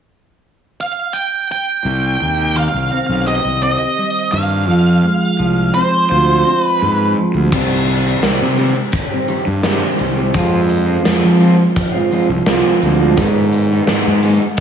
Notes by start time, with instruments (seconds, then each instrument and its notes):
0.81 lead electric guitar F5
1.13 lead electric guitar G5
1.52 lead electric guitar G5
1.83 fingered electric bass C2, clean electric guitar C3
2.19 fingered electric bass D#2, clean electric guitar D#3
2.55 clean electric guitar D#3, lead electric guitar F5
2.74 fingered electric bass C2
2.91 clean electric guitar C4
3.09 fingered electric bass B1
3.27 clean electric guitar G4, lead electric guitar D#5
3.45 fingered electric bass C2
3.62 clean electric guitar C4, lead electric guitar D#5
3.98 clean electric guitar G3
4.32 fingered electric bass G2, clean electric guitar D#3, lead electric guitar F5
4.68 fingered electric bass F2, clean electric guitar F3
5.03 clean electric guitar G#3
5.39 fingered electric bass C2, clean electric guitar F3
5.74 clean electric guitar C4, lead electric guitar C5
6.10 fingered electric bass D2, clean electric guitar F4
6.45 clean electric guitar C4
6.63 lead electric guitar B4
6.81 fingered electric bass G#2, clean electric guitar G#3
7.16 clean electric guitar F3
7.34 fingered electric bass D2
7.51 fingered electric bass C2, clean electric guitar C3 D#3 G3 C4 G4, kick, crash
7.87 closed hi-hat
8.05 clean electric guitar G3 C4 G4
8.21 fingered electric bass C2, clean electric guitar C3 D#3 G3 C4 G4, snare, closed hi-hat
8.42 fingered electric bass C3
8.57 clean electric guitar D#3 G3 C4 G4, closed hi-hat
8.74 muted clean electric guitar stroke
8.92 kick, closed hi-hat
9.10 clean electric guitar G3 C4 G4
9.27 clean electric guitar D#3 G3 C4 G4, closed hi-hat
9.45 fingered electric bass G2, muted clean electric guitar stroke
9.63 fingered electric bass G2, clean electric guitar C3 D#3 G3 C4 G4, snare, closed hi-hat
9.99 fingered electric bass C2, closed hi-hat
10.16 clean electric guitar G3 C4 G4
10.34 fingered electric bass F2, clean electric guitar F3 G#3 C4 F4, kick, closed hi-hat
10.70 closed hi-hat
10.86 clean electric guitar G#3 C4 F4
11.04 fingered electric bass F2, clean electric guitar F3 G#3 C4 F4, snare, closed hi-hat
11.24 fingered electric bass F3
11.39 clean electric guitar F3 G#3 C4 F4, closed hi-hat
11.58 muted clean electric guitar stroke
11.76 kick, closed hi-hat
11.92 clean electric guitar G#3 C4 F4
12.11 clean electric guitar F3 G#3 C4 F4, closed hi-hat
12.29 fingered electric bass C2, muted clean electric guitar stroke
12.46 fingered electric bass C2, clean electric guitar F3 G#3 C4 F4, snare, closed hi-hat
12.82 fingered electric bass D2, closed hi-hat
12.98 clean electric guitar G#3 C4 F4
13.16 clean electric guitar G#2 D#3 G#3 B3 D#4, fingered electric bass G#2, kick, closed hi-hat
13.53 closed hi-hat
13.70 clean electric guitar G#3 B3 D#4
13.87 clean electric guitar G#2 D#3 G#3 B3 D#4, fingered electric bass G#2, snare, closed hi-hat
14.07 fingered electric bass G#2
14.23 clean electric guitar D#3 G#3 B3 D#4, closed hi-hat
14.41 muted clean electric guitar stroke
14.57 closed hi-hat